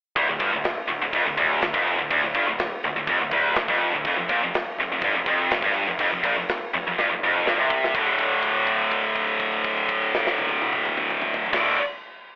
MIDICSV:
0, 0, Header, 1, 4, 480
1, 0, Start_track
1, 0, Key_signature, -1, "minor"
1, 0, Tempo, 485437
1, 167, Time_signature, 4, 2, 24, 8
1, 12217, End_track
2, 0, Start_track
2, 0, Title_t, "Distorted electric guitar"
2, 0, Program_c, 0, 30
2, 165, Note_on_c, 0, 38, 107
2, 274, Note_off_c, 0, 38, 0
2, 286, Note_on_c, 0, 38, 64
2, 397, Note_off_c, 0, 38, 0
2, 401, Note_on_c, 0, 43, 106
2, 517, Note_off_c, 0, 43, 0
2, 523, Note_on_c, 0, 38, 74
2, 717, Note_off_c, 0, 38, 0
2, 874, Note_on_c, 0, 38, 68
2, 996, Note_off_c, 0, 38, 0
2, 1008, Note_on_c, 0, 38, 75
2, 1128, Note_off_c, 0, 38, 0
2, 1136, Note_on_c, 0, 41, 103
2, 1245, Note_off_c, 0, 41, 0
2, 1249, Note_on_c, 0, 38, 65
2, 1348, Note_off_c, 0, 38, 0
2, 1360, Note_on_c, 0, 38, 105
2, 1587, Note_off_c, 0, 38, 0
2, 1599, Note_on_c, 0, 38, 73
2, 1717, Note_off_c, 0, 38, 0
2, 1721, Note_on_c, 0, 41, 98
2, 1957, Note_off_c, 0, 41, 0
2, 1966, Note_on_c, 0, 38, 64
2, 2071, Note_off_c, 0, 38, 0
2, 2083, Note_on_c, 0, 38, 112
2, 2196, Note_off_c, 0, 38, 0
2, 2207, Note_on_c, 0, 38, 73
2, 2322, Note_off_c, 0, 38, 0
2, 2325, Note_on_c, 0, 43, 105
2, 2440, Note_off_c, 0, 43, 0
2, 2446, Note_on_c, 0, 38, 79
2, 2640, Note_off_c, 0, 38, 0
2, 2815, Note_on_c, 0, 38, 71
2, 2918, Note_off_c, 0, 38, 0
2, 2930, Note_on_c, 0, 38, 74
2, 3050, Note_off_c, 0, 38, 0
2, 3054, Note_on_c, 0, 41, 112
2, 3163, Note_off_c, 0, 41, 0
2, 3167, Note_on_c, 0, 38, 66
2, 3280, Note_off_c, 0, 38, 0
2, 3292, Note_on_c, 0, 38, 113
2, 3516, Note_off_c, 0, 38, 0
2, 3528, Note_on_c, 0, 38, 79
2, 3647, Note_off_c, 0, 38, 0
2, 3651, Note_on_c, 0, 41, 94
2, 3884, Note_off_c, 0, 41, 0
2, 3893, Note_on_c, 0, 38, 73
2, 4013, Note_off_c, 0, 38, 0
2, 4024, Note_on_c, 0, 41, 114
2, 4119, Note_off_c, 0, 41, 0
2, 4131, Note_on_c, 0, 41, 73
2, 4245, Note_off_c, 0, 41, 0
2, 4249, Note_on_c, 0, 46, 103
2, 4364, Note_off_c, 0, 46, 0
2, 4385, Note_on_c, 0, 41, 80
2, 4572, Note_off_c, 0, 41, 0
2, 4748, Note_on_c, 0, 41, 76
2, 4853, Note_off_c, 0, 41, 0
2, 4864, Note_on_c, 0, 41, 75
2, 4980, Note_off_c, 0, 41, 0
2, 4985, Note_on_c, 0, 43, 112
2, 5093, Note_off_c, 0, 43, 0
2, 5099, Note_on_c, 0, 41, 70
2, 5207, Note_off_c, 0, 41, 0
2, 5219, Note_on_c, 0, 41, 114
2, 5451, Note_off_c, 0, 41, 0
2, 5469, Note_on_c, 0, 41, 81
2, 5572, Note_off_c, 0, 41, 0
2, 5576, Note_on_c, 0, 43, 103
2, 5810, Note_off_c, 0, 43, 0
2, 5818, Note_on_c, 0, 41, 65
2, 5924, Note_off_c, 0, 41, 0
2, 5936, Note_on_c, 0, 41, 108
2, 6043, Note_off_c, 0, 41, 0
2, 6055, Note_on_c, 0, 41, 67
2, 6176, Note_off_c, 0, 41, 0
2, 6182, Note_on_c, 0, 46, 107
2, 6293, Note_off_c, 0, 46, 0
2, 6298, Note_on_c, 0, 41, 78
2, 6490, Note_off_c, 0, 41, 0
2, 6665, Note_on_c, 0, 41, 73
2, 6782, Note_off_c, 0, 41, 0
2, 6795, Note_on_c, 0, 41, 76
2, 6901, Note_off_c, 0, 41, 0
2, 6905, Note_on_c, 0, 43, 101
2, 7015, Note_off_c, 0, 43, 0
2, 7027, Note_on_c, 0, 41, 68
2, 7143, Note_off_c, 0, 41, 0
2, 7153, Note_on_c, 0, 41, 104
2, 7379, Note_off_c, 0, 41, 0
2, 7383, Note_on_c, 0, 43, 113
2, 7494, Note_off_c, 0, 43, 0
2, 7502, Note_on_c, 0, 48, 100
2, 7854, Note_off_c, 0, 48, 0
2, 7860, Note_on_c, 0, 38, 93
2, 7881, Note_on_c, 0, 45, 91
2, 7905, Note_on_c, 0, 50, 100
2, 11348, Note_off_c, 0, 38, 0
2, 11358, Note_off_c, 0, 45, 0
2, 11370, Note_off_c, 0, 50, 0
2, 11402, Note_on_c, 0, 38, 77
2, 11426, Note_on_c, 0, 45, 84
2, 11443, Note_on_c, 0, 50, 110
2, 11619, Note_off_c, 0, 38, 0
2, 11631, Note_off_c, 0, 45, 0
2, 11639, Note_off_c, 0, 50, 0
2, 12217, End_track
3, 0, Start_track
3, 0, Title_t, "Picked electric bass"
3, 0, Program_c, 1, 34
3, 160, Note_on_c, 1, 26, 90
3, 275, Note_off_c, 1, 26, 0
3, 288, Note_on_c, 1, 26, 78
3, 390, Note_off_c, 1, 26, 0
3, 396, Note_on_c, 1, 31, 96
3, 510, Note_off_c, 1, 31, 0
3, 515, Note_on_c, 1, 26, 80
3, 744, Note_off_c, 1, 26, 0
3, 888, Note_on_c, 1, 26, 86
3, 999, Note_off_c, 1, 26, 0
3, 1015, Note_on_c, 1, 26, 76
3, 1113, Note_off_c, 1, 26, 0
3, 1119, Note_on_c, 1, 29, 99
3, 1235, Note_off_c, 1, 29, 0
3, 1262, Note_on_c, 1, 26, 85
3, 1356, Note_off_c, 1, 26, 0
3, 1362, Note_on_c, 1, 26, 95
3, 1588, Note_off_c, 1, 26, 0
3, 1599, Note_on_c, 1, 26, 77
3, 1715, Note_off_c, 1, 26, 0
3, 1727, Note_on_c, 1, 29, 90
3, 1951, Note_off_c, 1, 29, 0
3, 1964, Note_on_c, 1, 26, 80
3, 2078, Note_off_c, 1, 26, 0
3, 2083, Note_on_c, 1, 26, 90
3, 2197, Note_off_c, 1, 26, 0
3, 2211, Note_on_c, 1, 26, 78
3, 2314, Note_off_c, 1, 26, 0
3, 2320, Note_on_c, 1, 31, 91
3, 2435, Note_off_c, 1, 31, 0
3, 2458, Note_on_c, 1, 26, 81
3, 2677, Note_off_c, 1, 26, 0
3, 2805, Note_on_c, 1, 26, 78
3, 2919, Note_off_c, 1, 26, 0
3, 2927, Note_on_c, 1, 26, 79
3, 3040, Note_off_c, 1, 26, 0
3, 3047, Note_on_c, 1, 29, 90
3, 3158, Note_off_c, 1, 29, 0
3, 3164, Note_on_c, 1, 26, 78
3, 3273, Note_off_c, 1, 26, 0
3, 3278, Note_on_c, 1, 26, 106
3, 3508, Note_off_c, 1, 26, 0
3, 3517, Note_on_c, 1, 26, 78
3, 3633, Note_off_c, 1, 26, 0
3, 3639, Note_on_c, 1, 29, 95
3, 3868, Note_off_c, 1, 29, 0
3, 3896, Note_on_c, 1, 26, 79
3, 3999, Note_off_c, 1, 26, 0
3, 4005, Note_on_c, 1, 29, 87
3, 4116, Note_off_c, 1, 29, 0
3, 4122, Note_on_c, 1, 29, 75
3, 4239, Note_off_c, 1, 29, 0
3, 4244, Note_on_c, 1, 34, 93
3, 4360, Note_off_c, 1, 34, 0
3, 4379, Note_on_c, 1, 29, 80
3, 4600, Note_off_c, 1, 29, 0
3, 4722, Note_on_c, 1, 29, 89
3, 4840, Note_off_c, 1, 29, 0
3, 4853, Note_on_c, 1, 29, 82
3, 4960, Note_off_c, 1, 29, 0
3, 4966, Note_on_c, 1, 31, 94
3, 5078, Note_off_c, 1, 31, 0
3, 5084, Note_on_c, 1, 29, 82
3, 5201, Note_off_c, 1, 29, 0
3, 5211, Note_on_c, 1, 29, 102
3, 5437, Note_off_c, 1, 29, 0
3, 5444, Note_on_c, 1, 29, 78
3, 5555, Note_off_c, 1, 29, 0
3, 5561, Note_on_c, 1, 31, 101
3, 5792, Note_off_c, 1, 31, 0
3, 5809, Note_on_c, 1, 29, 86
3, 5922, Note_off_c, 1, 29, 0
3, 5928, Note_on_c, 1, 29, 88
3, 6044, Note_off_c, 1, 29, 0
3, 6054, Note_on_c, 1, 29, 78
3, 6168, Note_off_c, 1, 29, 0
3, 6176, Note_on_c, 1, 34, 95
3, 6289, Note_off_c, 1, 34, 0
3, 6303, Note_on_c, 1, 29, 80
3, 6524, Note_off_c, 1, 29, 0
3, 6667, Note_on_c, 1, 29, 84
3, 6775, Note_off_c, 1, 29, 0
3, 6781, Note_on_c, 1, 29, 81
3, 6892, Note_off_c, 1, 29, 0
3, 6904, Note_on_c, 1, 31, 100
3, 7014, Note_off_c, 1, 31, 0
3, 7031, Note_on_c, 1, 29, 82
3, 7137, Note_off_c, 1, 29, 0
3, 7150, Note_on_c, 1, 29, 95
3, 7369, Note_off_c, 1, 29, 0
3, 7386, Note_on_c, 1, 31, 95
3, 7495, Note_off_c, 1, 31, 0
3, 7508, Note_on_c, 1, 36, 99
3, 7839, Note_off_c, 1, 36, 0
3, 7855, Note_on_c, 1, 26, 88
3, 11306, Note_off_c, 1, 26, 0
3, 11409, Note_on_c, 1, 26, 94
3, 11607, Note_off_c, 1, 26, 0
3, 12217, End_track
4, 0, Start_track
4, 0, Title_t, "Drums"
4, 159, Note_on_c, 9, 36, 95
4, 161, Note_on_c, 9, 49, 76
4, 258, Note_off_c, 9, 36, 0
4, 260, Note_off_c, 9, 49, 0
4, 396, Note_on_c, 9, 36, 109
4, 397, Note_on_c, 9, 49, 64
4, 495, Note_off_c, 9, 36, 0
4, 496, Note_off_c, 9, 49, 0
4, 634, Note_on_c, 9, 49, 83
4, 645, Note_on_c, 9, 38, 105
4, 733, Note_off_c, 9, 49, 0
4, 743, Note_off_c, 9, 38, 0
4, 877, Note_on_c, 9, 49, 70
4, 976, Note_off_c, 9, 49, 0
4, 1120, Note_on_c, 9, 36, 111
4, 1120, Note_on_c, 9, 49, 81
4, 1218, Note_off_c, 9, 36, 0
4, 1219, Note_off_c, 9, 49, 0
4, 1360, Note_on_c, 9, 36, 101
4, 1362, Note_on_c, 9, 49, 64
4, 1459, Note_off_c, 9, 36, 0
4, 1461, Note_off_c, 9, 49, 0
4, 1598, Note_on_c, 9, 49, 85
4, 1609, Note_on_c, 9, 38, 115
4, 1697, Note_off_c, 9, 49, 0
4, 1708, Note_off_c, 9, 38, 0
4, 1722, Note_on_c, 9, 36, 102
4, 1820, Note_off_c, 9, 36, 0
4, 1852, Note_on_c, 9, 49, 67
4, 1951, Note_off_c, 9, 49, 0
4, 2082, Note_on_c, 9, 36, 104
4, 2087, Note_on_c, 9, 49, 80
4, 2181, Note_off_c, 9, 36, 0
4, 2186, Note_off_c, 9, 49, 0
4, 2319, Note_on_c, 9, 49, 61
4, 2320, Note_on_c, 9, 36, 101
4, 2418, Note_off_c, 9, 49, 0
4, 2419, Note_off_c, 9, 36, 0
4, 2559, Note_on_c, 9, 49, 85
4, 2570, Note_on_c, 9, 38, 117
4, 2658, Note_off_c, 9, 49, 0
4, 2669, Note_off_c, 9, 38, 0
4, 2799, Note_on_c, 9, 49, 65
4, 2898, Note_off_c, 9, 49, 0
4, 3038, Note_on_c, 9, 49, 78
4, 3039, Note_on_c, 9, 36, 110
4, 3137, Note_off_c, 9, 49, 0
4, 3138, Note_off_c, 9, 36, 0
4, 3275, Note_on_c, 9, 49, 62
4, 3277, Note_on_c, 9, 36, 105
4, 3374, Note_off_c, 9, 49, 0
4, 3376, Note_off_c, 9, 36, 0
4, 3514, Note_on_c, 9, 49, 70
4, 3525, Note_on_c, 9, 38, 118
4, 3613, Note_off_c, 9, 49, 0
4, 3624, Note_off_c, 9, 38, 0
4, 3642, Note_on_c, 9, 36, 96
4, 3741, Note_off_c, 9, 36, 0
4, 3764, Note_on_c, 9, 49, 57
4, 3863, Note_off_c, 9, 49, 0
4, 4004, Note_on_c, 9, 36, 101
4, 4004, Note_on_c, 9, 49, 72
4, 4103, Note_off_c, 9, 36, 0
4, 4103, Note_off_c, 9, 49, 0
4, 4245, Note_on_c, 9, 36, 108
4, 4247, Note_on_c, 9, 49, 60
4, 4344, Note_off_c, 9, 36, 0
4, 4346, Note_off_c, 9, 49, 0
4, 4491, Note_on_c, 9, 49, 86
4, 4502, Note_on_c, 9, 38, 112
4, 4590, Note_off_c, 9, 49, 0
4, 4600, Note_off_c, 9, 38, 0
4, 4728, Note_on_c, 9, 49, 60
4, 4827, Note_off_c, 9, 49, 0
4, 4955, Note_on_c, 9, 49, 86
4, 4963, Note_on_c, 9, 36, 110
4, 5054, Note_off_c, 9, 49, 0
4, 5061, Note_off_c, 9, 36, 0
4, 5200, Note_on_c, 9, 49, 65
4, 5203, Note_on_c, 9, 36, 105
4, 5299, Note_off_c, 9, 49, 0
4, 5302, Note_off_c, 9, 36, 0
4, 5445, Note_on_c, 9, 49, 86
4, 5456, Note_on_c, 9, 38, 104
4, 5544, Note_off_c, 9, 49, 0
4, 5554, Note_off_c, 9, 38, 0
4, 5562, Note_on_c, 9, 36, 101
4, 5660, Note_off_c, 9, 36, 0
4, 5669, Note_on_c, 9, 49, 64
4, 5768, Note_off_c, 9, 49, 0
4, 5919, Note_on_c, 9, 49, 88
4, 5924, Note_on_c, 9, 36, 107
4, 6018, Note_off_c, 9, 49, 0
4, 6022, Note_off_c, 9, 36, 0
4, 6167, Note_on_c, 9, 36, 102
4, 6173, Note_on_c, 9, 49, 70
4, 6266, Note_off_c, 9, 36, 0
4, 6272, Note_off_c, 9, 49, 0
4, 6413, Note_on_c, 9, 49, 88
4, 6424, Note_on_c, 9, 38, 122
4, 6512, Note_off_c, 9, 49, 0
4, 6523, Note_off_c, 9, 38, 0
4, 6657, Note_on_c, 9, 49, 67
4, 6756, Note_off_c, 9, 49, 0
4, 6909, Note_on_c, 9, 38, 69
4, 7008, Note_off_c, 9, 38, 0
4, 7023, Note_on_c, 9, 48, 55
4, 7121, Note_off_c, 9, 48, 0
4, 7260, Note_on_c, 9, 47, 72
4, 7359, Note_off_c, 9, 47, 0
4, 7390, Note_on_c, 9, 38, 87
4, 7489, Note_off_c, 9, 38, 0
4, 7617, Note_on_c, 9, 36, 96
4, 7716, Note_off_c, 9, 36, 0
4, 7755, Note_on_c, 9, 38, 83
4, 7854, Note_off_c, 9, 38, 0
4, 7858, Note_on_c, 9, 36, 104
4, 7865, Note_on_c, 9, 57, 83
4, 7957, Note_off_c, 9, 36, 0
4, 7964, Note_off_c, 9, 57, 0
4, 8095, Note_on_c, 9, 36, 66
4, 8097, Note_on_c, 9, 57, 45
4, 8193, Note_off_c, 9, 36, 0
4, 8196, Note_off_c, 9, 57, 0
4, 8210, Note_on_c, 9, 49, 43
4, 8309, Note_off_c, 9, 49, 0
4, 8331, Note_on_c, 9, 36, 65
4, 8335, Note_on_c, 9, 57, 48
4, 8430, Note_off_c, 9, 36, 0
4, 8434, Note_off_c, 9, 57, 0
4, 8452, Note_on_c, 9, 49, 45
4, 8551, Note_off_c, 9, 49, 0
4, 8573, Note_on_c, 9, 36, 67
4, 8573, Note_on_c, 9, 57, 51
4, 8672, Note_off_c, 9, 36, 0
4, 8672, Note_off_c, 9, 57, 0
4, 8689, Note_on_c, 9, 49, 48
4, 8788, Note_off_c, 9, 49, 0
4, 8815, Note_on_c, 9, 36, 68
4, 8819, Note_on_c, 9, 57, 50
4, 8914, Note_off_c, 9, 36, 0
4, 8918, Note_off_c, 9, 57, 0
4, 8932, Note_on_c, 9, 49, 48
4, 9031, Note_off_c, 9, 49, 0
4, 9053, Note_on_c, 9, 36, 62
4, 9055, Note_on_c, 9, 57, 44
4, 9152, Note_off_c, 9, 36, 0
4, 9154, Note_off_c, 9, 57, 0
4, 9174, Note_on_c, 9, 49, 46
4, 9273, Note_off_c, 9, 49, 0
4, 9293, Note_on_c, 9, 36, 58
4, 9294, Note_on_c, 9, 57, 48
4, 9392, Note_off_c, 9, 36, 0
4, 9393, Note_off_c, 9, 57, 0
4, 9411, Note_on_c, 9, 49, 50
4, 9510, Note_off_c, 9, 49, 0
4, 9536, Note_on_c, 9, 36, 69
4, 9538, Note_on_c, 9, 57, 52
4, 9635, Note_off_c, 9, 36, 0
4, 9636, Note_off_c, 9, 57, 0
4, 9659, Note_on_c, 9, 49, 56
4, 9758, Note_off_c, 9, 49, 0
4, 9778, Note_on_c, 9, 36, 66
4, 9781, Note_on_c, 9, 57, 52
4, 9877, Note_off_c, 9, 36, 0
4, 9880, Note_off_c, 9, 57, 0
4, 9906, Note_on_c, 9, 49, 57
4, 10005, Note_off_c, 9, 49, 0
4, 10034, Note_on_c, 9, 38, 100
4, 10132, Note_off_c, 9, 38, 0
4, 10154, Note_on_c, 9, 38, 86
4, 10253, Note_off_c, 9, 38, 0
4, 10266, Note_on_c, 9, 48, 92
4, 10365, Note_off_c, 9, 48, 0
4, 10374, Note_on_c, 9, 48, 95
4, 10473, Note_off_c, 9, 48, 0
4, 10500, Note_on_c, 9, 48, 94
4, 10598, Note_off_c, 9, 48, 0
4, 10609, Note_on_c, 9, 47, 95
4, 10707, Note_off_c, 9, 47, 0
4, 10732, Note_on_c, 9, 47, 106
4, 10831, Note_off_c, 9, 47, 0
4, 10852, Note_on_c, 9, 45, 93
4, 10951, Note_off_c, 9, 45, 0
4, 10980, Note_on_c, 9, 45, 88
4, 11079, Note_off_c, 9, 45, 0
4, 11090, Note_on_c, 9, 45, 92
4, 11189, Note_off_c, 9, 45, 0
4, 11214, Note_on_c, 9, 43, 106
4, 11313, Note_off_c, 9, 43, 0
4, 11335, Note_on_c, 9, 43, 108
4, 11402, Note_on_c, 9, 57, 105
4, 11403, Note_on_c, 9, 36, 105
4, 11413, Note_on_c, 9, 38, 100
4, 11434, Note_off_c, 9, 43, 0
4, 11501, Note_off_c, 9, 57, 0
4, 11502, Note_off_c, 9, 36, 0
4, 11512, Note_off_c, 9, 38, 0
4, 12217, End_track
0, 0, End_of_file